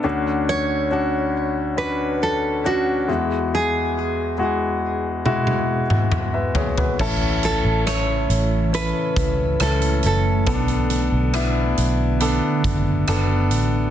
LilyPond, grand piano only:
<<
  \new Staff \with { instrumentName = "Grand piano" } { \time 4/4 \key a \major \tempo 4 = 69 << { r1 | r2. r16 <b' e''>16 <gis' cis''>16 <fis' b'>16~ | <fis' b'>16 r2. r8. | r1 | } \\ { <cis' d' fis'>4 <cis' d' fis'>4 <cis' d' fis'>4 <cis' d' fis'>8 <gis e' fis'>8~ | <gis e' fis'>4 <gis e' fis'>4 <gis e' fis'>4 r4 | <cis' e' a'>4 <e' a'>4 <cis' e' a'>4 <cis' e' a'>4 | <b cis' d' a'>4 <b d' e'>4 <b d' a'>4 <b d' a'>4 | } >> }
  \new Staff \with { instrumentName = "Grand piano" } { \clef bass \time 4/4 \key a \major <d, d>2.~ <d, d>8 <e, e>8~ | <e, e>2.~ <e, e>8 r8 | a,4. r2 r8 | b,4. r2 r8 | }
>>